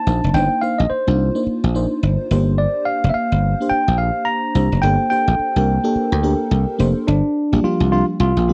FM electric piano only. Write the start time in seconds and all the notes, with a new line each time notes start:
Already playing: A#3 D4 D#4 C5
0.07 A#3 D4 D#4 C5
0.36 A#3 D4 D#4 C5
0.62 A#3 D4 D#4 C5
1.07 A#3 D4 D#4 F4
1.35 A#3 D4 D#4 C5
1.75 A#3 D4 D#4 C5
2.31 A#3 D4 G4 C5
3.60 A#3 D4 G4 C5
4.55 A#3 D4 G4 C5
4.83 A#3 D4 G4 A4
5.11 A#3 D4 G4 C5
5.56 A#3 D4 G4 A#4
5.84 A#3 D4 G4 A4
6.23 A#3 D4 G4 A#4
6.79 A#3 D4 G4 C5
7.52 F3 G3 A#3 D4 G4
7.64 F3 G3 A#3 D4 G4
7.92 F3 G3 A#3 D4 G4
8.48 D#3 G3 A#3 C4 G4